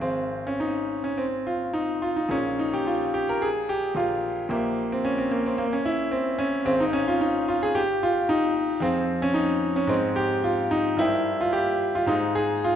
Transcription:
0.00 G#1 C4 G#4 C5 F5
0.47 C#4
0.60 D#4
1.04 C#4
1.18 C4
1.47 F4
1.73 D#4
2.02 F4
2.16 D#4
2.29 A#1 C#4 G#4 A#4 F5
2.59 D#4
2.73 G4
2.87 F4
3.14 G4
3.29 A#4
3.42 G#4
3.69 G4
3.95 A#1 F4 G#4 A#4 F5
4.49 A#1 A#3 G4 C5 E5
4.92 C4
5.05 C#4
5.18 C4
5.31 A#3
5.46 C4
5.58 A#3
5.73 C#4
5.85 E4
6.12 C4
6.39 C#4
6.64 G#1 C4 G#4 C5 F5
6.80 D#4
6.93 C#4
7.08 F4
7.21 D#4
7.48 F4
7.63 G#4
7.75 G4
8.03 F4
8.29 D#4
8.80 F2 C4 G#4 C5 F5
9.22 C#4
9.34 D#4
9.76 C#4
9.87 G#2 C4 G#4 C5 D#5
10.16 G4
10.44 F4
10.71 D#4
10.97 G2 E4 A#4 C5 G5
11.41 F4
11.53 G4
11.95 F4
12.06 G#2 D#4 G#4 C5 F5
12.35 G#4
12.65 F4

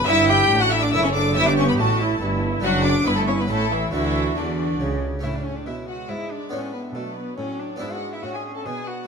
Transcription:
0.04 B3 D4 E4 E5
0.08 G1 G2 E4 E6
0.29 G4 G5 G6
0.50 A1 A2 D4
0.61 F#4 F#5 F#6
0.72 E4 E5 E6
0.82 D4 D5 D6
0.92 F#1 F#2 E4 A4 E5 E6
1.04 C#4 C#5 C#6
1.14 D4 D5 D6
1.32 G2 A3 C#4 E4 E5 E6
1.36 G1 G2 G4
1.47 D4 D5 D6
1.56 C#4 C#5 C#6
1.67 B3 B4 B5
1.77 A1 A2 A3 F#4 A4 A5
2.00 E4
2.21 G1 G2 E4
2.60 F#1 F#2 F#3 A3 D4 F#4
2.64 F#2 D4 F#5
2.85 D4 D5 D6
3.04 G1 G2 B3 E4 B4 B5
3.16 A3 A4 A5
3.28 C#4 C#5 C#6
3.38 B3 B4 B5
3.47 A1 A2 A3 C#4 E4 A4 A5
3.70 E3 E4 E5
3.91 D2 D3 E3 A3 D4 E4 F#4 E5
4.36 E2 D3 E3 D4 D5
4.80 C#2 C#3
5.19 A2 A3 C#4
5.23 A2 A3 E4 C#5 E5
5.34 D4 D5
5.44 C#4 C#5
5.55 D4 D5
5.66 B2 G#3 E4 E5
5.87 F#4 F#5
6.09 G#2 E4 E5
6.30 D4 D5
6.49 A2 B3 C#4 D4 C#5 E5
6.73 B3 B4
6.94 B2 F#3 A3 A4 D5
7.16 B3 B4
7.37 A2 F#3 C#4 C#5
7.59 D4 D5
7.76 B3 D4 E4
7.80 G#2 G#3 B4 E5
7.92 F#4 F#5
8.13 E4 E5
8.23 A2 C#4 F#4 E5 F#5
8.34 G#4 G#5
8.55 A4 A5
8.66 B2 B3 G#4 D5 G#5
8.87 F#4 F#5

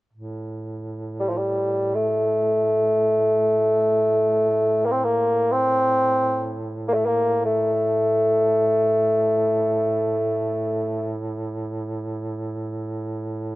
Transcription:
0.13 A2
1.20 G3
1.28 F3
1.37 G3
1.94 A3
4.85 A#3
4.91 C4
5.04 A#3
5.51 C4
6.88 A#3
6.93 A3
7.05 A#3
7.45 A3

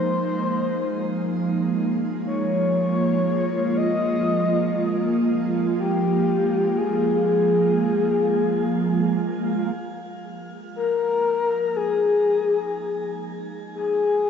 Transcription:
Already playing: F3 G#3 A#3 D#4 C5
1.72 F4
2.26 C#5
3.77 D#5
5.78 G4
6.78 G#4
7.25 G#4
10.76 A#4
10.93 D#4
11.76 G#4
13.75 G#4

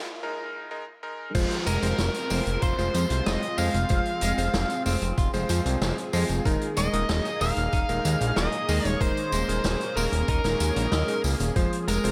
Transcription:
0.23 G#3 D#4 A#4
0.71 G#3 D#4 A#4
1.03 G#3 D#4 A#4
1.35 F1 F3 G#3 C4 F4 G#4 C5, kick, closed hi-hat, crash, tambourine, downlifter
1.51 closed hi-hat
1.66 F1 G#3 A#4 A#5, closed hi-hat, tambourine
1.82 F1 G#3 F4 C5, closed hi-hat, tambourine
1.98 F1, snare, closed hi-hat, tambourine
2.14 closed hi-hat, tambourine
2.30 F1 G#3 C4 F4 C5, open hi-hat, tambourine
2.46 F1, closed hi-hat, tambourine
2.62 F1 F4 C5 C6, kick, closed hi-hat, tambourine
2.78 F1 G#3 F4 C5, closed hi-hat, tambourine
2.94 F2 F3, closed hi-hat, tambourine
3.10 C2, closed hi-hat, tambourine
3.26 F1 G#3 F4 C5 D#5 D#6, snare, closed hi-hat, tambourine
3.42 closed hi-hat
3.58 F2 G#3 F4 C5 F5 F6, open hi-hat, tambourine
3.74 F1, closed hi-hat, tambourine
3.89 F1 F3 G#3 F4 C5, kick, closed hi-hat, tambourine
4.05 closed hi-hat
4.21 F1 G#3, closed hi-hat, tambourine
4.38 F1 G#3 F4 C5, closed hi-hat, tambourine
4.54 F1, snare, closed hi-hat, tambourine
4.70 closed hi-hat, tambourine
4.85 F1 G#3 C4 F4 C5, open hi-hat, tambourine
5.02 F1, closed hi-hat, tambourine
5.18 F1 F4, kick, closed hi-hat, tambourine
5.33 F1 G#3 F4 C5, closed hi-hat, tambourine
5.49 F2 F3, closed hi-hat, tambourine
5.66 C2, closed hi-hat, tambourine
5.81 F1 G#3 F4 C5, snare, closed hi-hat, tambourine
5.98 closed hi-hat
6.13 F2 G#3 F4 C5, open hi-hat, tambourine
6.29 F1, closed hi-hat, tambourine
6.45 D#1 D#3 G#3 A#3 D#4 A#4, kick, closed hi-hat, tambourine
6.61 closed hi-hat
6.77 D#1 G#3 D#5 D#6, closed hi-hat, tambourine
6.93 D#1 G#3 D#4 A#4, closed hi-hat, tambourine
7.09 D#1, snare, closed hi-hat, tambourine
7.25 closed hi-hat, tambourine
7.41 D#1 G#3 A#3 D#4 A#4 F5 F6, open hi-hat, tambourine
7.57 D#1, closed hi-hat, tambourine
7.73 D#1 D#4, kick, closed hi-hat, tambourine
7.89 D#1 G#3 D#4 A#4, closed hi-hat, tambourine
8.05 D#2 D#3, closed hi-hat, tambourine
8.21 A#1, closed hi-hat, tambourine
8.36 D#1 G#3 D#4 A#4 D#5 D#6, snare, closed hi-hat, tambourine
8.52 closed hi-hat
8.69 D#2 G#3 D#4 A#4, open hi-hat, tambourine
8.85 D#1 C#5 C#6, closed hi-hat, tambourine
9.01 D#1 D#3 G#3 C#4 D#4 A#4 C5 C6, kick, closed hi-hat, tambourine
9.17 closed hi-hat
9.32 D#1 G#3, closed hi-hat, tambourine
9.49 D#1 G#3 D#4 A#4, closed hi-hat, tambourine
9.64 D#1, snare, closed hi-hat, tambourine
9.81 closed hi-hat, tambourine
9.96 D#1 G#3 A#3 D#4 A#4 A#5, open hi-hat, tambourine
10.12 D#1, closed hi-hat, tambourine
10.28 D#1 D#4 A#4 A#5, kick, closed hi-hat, tambourine
10.44 D#1 G#3 D#4 A#4, snare, closed hi-hat, tambourine
10.60 D#2, closed hi-hat, tambourine
10.76 A#1, closed hi-hat, tambourine
10.92 D#2 D#5, snare, closed hi-hat, tambourine
11.08 G#3 D#4 A#4, closed hi-hat, tambourine
11.24 C#2 A#3, open hi-hat, tambourine
11.40 D#1, closed hi-hat, tambourine
11.56 F1 F3 G#3 C4 F4 C5, kick, closed hi-hat, tambourine
11.73 closed hi-hat
11.88 F1 G#3 A#4 A#5, closed hi-hat, tambourine
12.03 F1 G#3 F4 C5, closed hi-hat, tambourine

